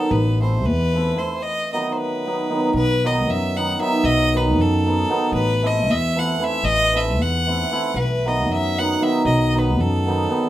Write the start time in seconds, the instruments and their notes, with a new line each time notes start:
Already playing: hammered dulcimer D#3 F#3, fiddle A4
0.11 upright bass A1, fiddle B4
0.40 hammered dulcimer E3 A3 C4 E4, fiddle C5
0.65 upright bass E2, fiddle B4
0.94 hammered dulcimer E3 A3 C4 E4
1.16 hammered dulcimer E3 A3 C4 E4, fiddle C5
1.42 fiddle D#5
1.73 hammered dulcimer D#3 F#3 B3 D#4, fiddle D#5
1.92 fiddle C5
1.97 fiddle B4
2.25 hammered dulcimer D#3 F#3 B3 D#4
2.50 hammered dulcimer D#3 F#3 B3 D#4
2.73 upright bass B1, fiddle B4
3.05 hammered dulcimer D#3 F#3 B3 D#4, fiddle D#5
3.30 upright bass F#2, fiddle E5
3.57 hammered dulcimer D#3 F#3 B3 D#4, fiddle F#5
3.79 hammered dulcimer D#3 F#3 B3 D#4, fiddle E5
4.04 upright bass B1, fiddle D#5
4.34 hammered dulcimer D#3 F#3 B3 D#4, fiddle B4
4.58 upright bass F#2, fiddle A4
4.86 hammered dulcimer D#3 F#3 B3 D#4
5.09 hammered dulcimer D#3 F#3 B3 D#4
5.32 upright bass A1, fiddle B4
5.62 hammered dulcimer E3 A3 C4 E4
5.67 fiddle D#5
5.89 upright bass E2, fiddle E5
6.16 hammered dulcimer E3 A3 C4 E4, fiddle F#5
6.40 hammered dulcimer E3 A3 C4 E4, fiddle E5
6.63 upright bass A1, fiddle D#5
6.94 hammered dulcimer E3 A3 C4 E4, fiddle E5
7.18 upright bass E2, fiddle F#5
7.46 hammered dulcimer E3 A3 C4 E4
7.71 hammered dulcimer E3 A3 C4 E4
7.94 upright bass B1, fiddle B4
8.25 hammered dulcimer D#3 F#3 B3 D#4, fiddle D#5
8.49 upright bass F#2, fiddle E5
8.78 hammered dulcimer D#3 F#3 B3 D#4, fiddle F#5
9.00 hammered dulcimer D#3 F#3 B3 D#4, fiddle E5
9.25 upright bass B1, fiddle D#5
9.54 hammered dulcimer D#3 F#3 B3 D#4
9.58 fiddle B4
9.80 upright bass F#2, fiddle A4
10.07 hammered dulcimer D#3 F#3 B3 D#4
10.29 hammered dulcimer D#3 F#3 B3 D#4